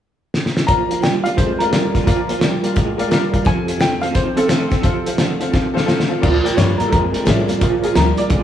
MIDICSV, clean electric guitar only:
0, 0, Header, 1, 2, 480
1, 0, Start_track
1, 0, Key_signature, -2, "major"
1, 0, Tempo, 346220
1, 952, Time_signature, 4, 2, 24, 8
1, 11690, End_track
2, 0, Start_track
2, 0, Title_t, "Clean electric guitar"
2, 0, Program_c, 0, 27
2, 946, Note_on_c, 0, 46, 74
2, 953, Note_on_c, 0, 53, 79
2, 1225, Note_off_c, 0, 46, 0
2, 1228, Note_off_c, 0, 53, 0
2, 1260, Note_on_c, 0, 46, 68
2, 1271, Note_on_c, 0, 53, 80
2, 1416, Note_off_c, 0, 46, 0
2, 1421, Note_off_c, 0, 53, 0
2, 1431, Note_on_c, 0, 46, 91
2, 1436, Note_on_c, 0, 55, 84
2, 1707, Note_off_c, 0, 46, 0
2, 1710, Note_off_c, 0, 55, 0
2, 1748, Note_on_c, 0, 46, 73
2, 1750, Note_on_c, 0, 55, 84
2, 1896, Note_off_c, 0, 46, 0
2, 1900, Note_off_c, 0, 55, 0
2, 1912, Note_on_c, 0, 46, 71
2, 1922, Note_on_c, 0, 56, 78
2, 2188, Note_off_c, 0, 46, 0
2, 2193, Note_off_c, 0, 56, 0
2, 2226, Note_on_c, 0, 46, 74
2, 2234, Note_on_c, 0, 56, 82
2, 2379, Note_off_c, 0, 46, 0
2, 2383, Note_off_c, 0, 56, 0
2, 2399, Note_on_c, 0, 46, 76
2, 2404, Note_on_c, 0, 55, 90
2, 2671, Note_off_c, 0, 46, 0
2, 2674, Note_off_c, 0, 55, 0
2, 2713, Note_on_c, 0, 46, 76
2, 2716, Note_on_c, 0, 55, 79
2, 2862, Note_off_c, 0, 46, 0
2, 2864, Note_off_c, 0, 55, 0
2, 2882, Note_on_c, 0, 46, 87
2, 2886, Note_on_c, 0, 53, 82
2, 3153, Note_off_c, 0, 46, 0
2, 3155, Note_off_c, 0, 53, 0
2, 3180, Note_on_c, 0, 46, 71
2, 3191, Note_on_c, 0, 53, 78
2, 3336, Note_off_c, 0, 46, 0
2, 3341, Note_off_c, 0, 53, 0
2, 3356, Note_on_c, 0, 46, 86
2, 3360, Note_on_c, 0, 55, 100
2, 3630, Note_off_c, 0, 46, 0
2, 3632, Note_off_c, 0, 55, 0
2, 3660, Note_on_c, 0, 46, 76
2, 3665, Note_on_c, 0, 55, 89
2, 3816, Note_off_c, 0, 46, 0
2, 3818, Note_off_c, 0, 55, 0
2, 3838, Note_on_c, 0, 46, 73
2, 3843, Note_on_c, 0, 56, 90
2, 4111, Note_off_c, 0, 46, 0
2, 4113, Note_off_c, 0, 56, 0
2, 4148, Note_on_c, 0, 46, 72
2, 4156, Note_on_c, 0, 56, 87
2, 4300, Note_off_c, 0, 46, 0
2, 4304, Note_off_c, 0, 56, 0
2, 4319, Note_on_c, 0, 46, 82
2, 4323, Note_on_c, 0, 55, 96
2, 4591, Note_off_c, 0, 46, 0
2, 4594, Note_off_c, 0, 55, 0
2, 4621, Note_on_c, 0, 46, 68
2, 4627, Note_on_c, 0, 55, 77
2, 4776, Note_off_c, 0, 46, 0
2, 4779, Note_off_c, 0, 55, 0
2, 4804, Note_on_c, 0, 41, 81
2, 4807, Note_on_c, 0, 48, 85
2, 5074, Note_off_c, 0, 41, 0
2, 5075, Note_off_c, 0, 48, 0
2, 5113, Note_on_c, 0, 41, 72
2, 5121, Note_on_c, 0, 48, 73
2, 5262, Note_off_c, 0, 41, 0
2, 5266, Note_off_c, 0, 48, 0
2, 5285, Note_on_c, 0, 41, 81
2, 5290, Note_on_c, 0, 50, 90
2, 5555, Note_off_c, 0, 41, 0
2, 5557, Note_off_c, 0, 50, 0
2, 5594, Note_on_c, 0, 41, 66
2, 5602, Note_on_c, 0, 50, 90
2, 5743, Note_off_c, 0, 41, 0
2, 5747, Note_off_c, 0, 50, 0
2, 5768, Note_on_c, 0, 41, 77
2, 5773, Note_on_c, 0, 51, 87
2, 6037, Note_off_c, 0, 41, 0
2, 6039, Note_off_c, 0, 51, 0
2, 6071, Note_on_c, 0, 41, 73
2, 6080, Note_on_c, 0, 51, 85
2, 6222, Note_off_c, 0, 41, 0
2, 6226, Note_off_c, 0, 51, 0
2, 6240, Note_on_c, 0, 41, 81
2, 6244, Note_on_c, 0, 50, 88
2, 6512, Note_off_c, 0, 41, 0
2, 6515, Note_off_c, 0, 50, 0
2, 6549, Note_on_c, 0, 41, 74
2, 6552, Note_on_c, 0, 50, 83
2, 6701, Note_off_c, 0, 41, 0
2, 6702, Note_off_c, 0, 50, 0
2, 6715, Note_on_c, 0, 41, 73
2, 6718, Note_on_c, 0, 48, 80
2, 6990, Note_off_c, 0, 41, 0
2, 6991, Note_off_c, 0, 48, 0
2, 7025, Note_on_c, 0, 41, 69
2, 7028, Note_on_c, 0, 48, 84
2, 7173, Note_off_c, 0, 41, 0
2, 7181, Note_off_c, 0, 48, 0
2, 7189, Note_on_c, 0, 41, 84
2, 7196, Note_on_c, 0, 50, 90
2, 7468, Note_off_c, 0, 41, 0
2, 7471, Note_off_c, 0, 50, 0
2, 7496, Note_on_c, 0, 41, 73
2, 7501, Note_on_c, 0, 50, 78
2, 7655, Note_off_c, 0, 41, 0
2, 7657, Note_off_c, 0, 50, 0
2, 7677, Note_on_c, 0, 41, 81
2, 7686, Note_on_c, 0, 51, 90
2, 7951, Note_off_c, 0, 41, 0
2, 7956, Note_off_c, 0, 51, 0
2, 7981, Note_on_c, 0, 41, 71
2, 7993, Note_on_c, 0, 51, 85
2, 8137, Note_off_c, 0, 41, 0
2, 8143, Note_off_c, 0, 51, 0
2, 8153, Note_on_c, 0, 41, 86
2, 8160, Note_on_c, 0, 50, 92
2, 8430, Note_off_c, 0, 41, 0
2, 8433, Note_off_c, 0, 50, 0
2, 8468, Note_on_c, 0, 41, 68
2, 8480, Note_on_c, 0, 50, 79
2, 8621, Note_off_c, 0, 41, 0
2, 8627, Note_off_c, 0, 50, 0
2, 8642, Note_on_c, 0, 46, 74
2, 8646, Note_on_c, 0, 53, 87
2, 8914, Note_off_c, 0, 46, 0
2, 8917, Note_off_c, 0, 53, 0
2, 8954, Note_on_c, 0, 46, 68
2, 8965, Note_on_c, 0, 53, 81
2, 9099, Note_off_c, 0, 46, 0
2, 9110, Note_off_c, 0, 53, 0
2, 9116, Note_on_c, 0, 46, 89
2, 9125, Note_on_c, 0, 55, 83
2, 9391, Note_off_c, 0, 46, 0
2, 9396, Note_off_c, 0, 55, 0
2, 9431, Note_on_c, 0, 46, 66
2, 9439, Note_on_c, 0, 55, 84
2, 9583, Note_off_c, 0, 46, 0
2, 9587, Note_off_c, 0, 55, 0
2, 9609, Note_on_c, 0, 46, 78
2, 9614, Note_on_c, 0, 56, 86
2, 9878, Note_off_c, 0, 46, 0
2, 9880, Note_off_c, 0, 56, 0
2, 9912, Note_on_c, 0, 46, 74
2, 9922, Note_on_c, 0, 56, 84
2, 10063, Note_off_c, 0, 46, 0
2, 10068, Note_off_c, 0, 56, 0
2, 10087, Note_on_c, 0, 46, 80
2, 10094, Note_on_c, 0, 55, 95
2, 10357, Note_off_c, 0, 46, 0
2, 10361, Note_off_c, 0, 55, 0
2, 10391, Note_on_c, 0, 46, 76
2, 10398, Note_on_c, 0, 55, 85
2, 10543, Note_off_c, 0, 46, 0
2, 10546, Note_off_c, 0, 55, 0
2, 10564, Note_on_c, 0, 46, 84
2, 10569, Note_on_c, 0, 53, 92
2, 10836, Note_off_c, 0, 46, 0
2, 10838, Note_off_c, 0, 53, 0
2, 10873, Note_on_c, 0, 46, 76
2, 10876, Note_on_c, 0, 53, 79
2, 11024, Note_off_c, 0, 46, 0
2, 11026, Note_off_c, 0, 53, 0
2, 11042, Note_on_c, 0, 46, 92
2, 11049, Note_on_c, 0, 55, 87
2, 11315, Note_off_c, 0, 46, 0
2, 11318, Note_off_c, 0, 55, 0
2, 11349, Note_on_c, 0, 46, 67
2, 11354, Note_on_c, 0, 55, 82
2, 11502, Note_off_c, 0, 46, 0
2, 11505, Note_off_c, 0, 55, 0
2, 11527, Note_on_c, 0, 46, 75
2, 11528, Note_on_c, 0, 56, 80
2, 11690, Note_off_c, 0, 46, 0
2, 11690, Note_off_c, 0, 56, 0
2, 11690, End_track
0, 0, End_of_file